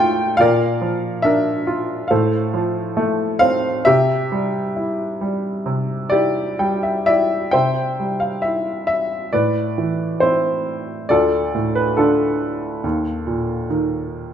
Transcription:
Already playing: A2 A3 E4 F4 E5 G5
0.37 A#2 D5 F5
0.41 A#4
0.81 F3
1.22 D4 A#4 E5
1.67 F4
2.08 A2 A4 C5 F5
2.54 F3
2.97 A3
3.39 C4 F5
3.85 C3 G4 E5
4.32 G3
4.76 E4
5.21 G3
5.66 C3
6.10 E4 G4 D5
6.59 G3 G5
6.83 E5
7.06 E4 D5 E5
7.51 C3 C5 E5 G5
8.00 G3
8.20 F5
8.42 E4 E5
8.87 E5
9.33 A2 B4 D5
9.78 E3
10.20 C4 E4 C5
11.09 D2 F4 A4 D5
11.55 A2
11.75 B4
11.97 D3 D4 F4 A4
12.84 D#2
13.27 A#2
13.70 D#3

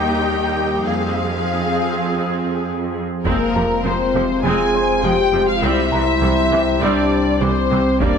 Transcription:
Already playing: D#2 G3 A#3 D#4 G4 D5 G5 D6
0.87 F2 F3 C4 F4 G#4 F5
3.25 F1 F2 G#3 A#3 C4 F4 A#4 C5, taiko
3.55 F1 F2 C3 F3 A#4 A#5
3.84 F1 F2 F3 G#3 C4 C5
4.15 F1 F2 C3 F3
4.44 F1 F2 G#3 C4 G#4 G#5
4.74 C5 C6
5.03 F1 F2 F3 G#3 G4 G5
5.33 F1 F2 C3 F3
5.48 F4 F5
5.62 C2 G3 C4 E4 G4 E5
5.92 C2 C3 E3 A#5
6.22 C2 E3 G3
6.52 C2 C3 E3
6.82 C2 G3 C4 D4 D5
7.41 C2 E3 G3 C4 E4 C5 D6
7.71 C2 C3 E3
8.00 D#1 D#2 G3 A#3 D4 G4 D5 G5, taiko

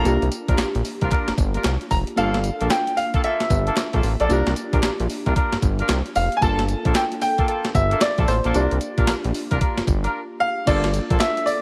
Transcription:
Already playing: A#3 A4 A#5
0.04 C2 A#3 D4 F4 G4 A#4, closed hi-hat, tambourine
0.22 C2, closed hi-hat
0.32 closed hi-hat, tambourine
0.48 A#1 D4 F4 A#4, kick, closed hi-hat
0.58 A#1, snare, clap, closed hi-hat, tambourine
0.75 A#1, closed hi-hat
0.85 open hi-hat, tambourine
1.01 C2 D4 F4 A#4, kick, closed hi-hat
1.11 D4 F4 A#4, kick, clap, closed hi-hat
1.28 G1, snare, closed hi-hat
1.38 G1, kick, closed hi-hat, tambourine
1.54 D4 F4 A#4, closed hi-hat
1.64 C2, snare, clap, closed hi-hat, tambourine
1.81 closed hi-hat
1.91 F1 A#5, kick, open hi-hat, tambourine
2.07 closed hi-hat
2.16 G1 A#3 D4 F4 A4 F5, closed hi-hat, tambourine
2.34 snare, closed hi-hat
2.44 closed hi-hat, tambourine
2.60 A#1 A#3 F4 A4, closed hi-hat
2.70 G5, snare, clap, closed hi-hat, tambourine
2.87 closed hi-hat
2.97 F5, open hi-hat, tambourine
3.14 A#3 F4 A4, kick, closed hi-hat
3.23 A#3 F4 A4 E5, closed hi-hat
3.40 snare, closed hi-hat
3.50 G1, kick, closed hi-hat, tambourine
3.67 A#3 F4 A4, closed hi-hat
3.77 snare, clap, closed hi-hat, tambourine
3.93 A#1 A#3 F4 A4, kick, closed hi-hat
4.03 A1, open hi-hat, tambourine
4.20 A#1 A#3 F4 A4 D5, closed hi-hat
4.29 C2 A#3 D4 F4 G4 A#4, closed hi-hat, tambourine
4.47 C2, snare, closed hi-hat
4.56 closed hi-hat, tambourine
4.73 A#1 D4 F4 A#4, kick, closed hi-hat
4.83 A#1, snare, clap, closed hi-hat, tambourine
5.00 A#1, closed hi-hat
5.10 open hi-hat, tambourine
5.26 C2 D4 F4 A#4, kick, closed hi-hat
5.36 D4 F4 A#4, kick, closed hi-hat
5.53 G1, snare, closed hi-hat
5.62 G1, kick, closed hi-hat, tambourine
5.79 D4 F4 A#4, closed hi-hat
5.89 C2, snare, clap, closed hi-hat, tambourine
6.06 closed hi-hat
6.15 F1 F5, open hi-hat, tambourine
6.32 closed hi-hat
6.37 G#5
6.41 G1 A#3 D4 F4 A4 A5, kick, closed hi-hat, tambourine
6.59 snare, closed hi-hat
6.69 closed hi-hat, tambourine
6.85 A#1 A#3 F4 A4, kick, closed hi-hat
6.95 G5, snare, clap, closed hi-hat, tambourine
7.12 closed hi-hat
7.21 G5, open hi-hat, tambourine
7.38 A#3 F4 A4, kick, closed hi-hat
7.48 A#3 F4 A4, closed hi-hat
7.65 snare, closed hi-hat
7.75 G1 E5, kick, closed hi-hat, tambourine
7.91 A#3 F4 A4, closed hi-hat
8.01 D5, snare, clap, closed hi-hat, tambourine
8.18 A#1 A#3 F4 A4, kick, closed hi-hat
8.28 A1 C5, open hi-hat, tambourine
8.44 A#1 A#3 F4 A4, closed hi-hat
8.54 C2 A#3 D4 F4 G4 A#4 D5, closed hi-hat, tambourine
8.71 C2, closed hi-hat
8.81 closed hi-hat, tambourine
8.98 A#1 D4 F4 A#4, kick, closed hi-hat
9.07 A#1, snare, clap, closed hi-hat, tambourine
9.24 A#1, closed hi-hat
9.34 open hi-hat, tambourine
9.51 C2 D4 F4 A#4, kick, closed hi-hat
9.61 D4 F4 A#4, kick, closed hi-hat
9.77 G1, snare, closed hi-hat
9.87 G1, kick, closed hi-hat, tambourine
10.04 D4 F4 A#4, closed hi-hat
10.40 F5
10.66 G1 A#3 D4 F4 A4 D5, kick, closed hi-hat, crash, tambourine
10.84 snare, closed hi-hat
10.94 closed hi-hat, tambourine
11.10 A#1 A#3 F4 A4, kick, closed hi-hat
11.20 E5, snare, clap, closed hi-hat, tambourine
11.37 closed hi-hat
11.46 D5, open hi-hat, tambourine

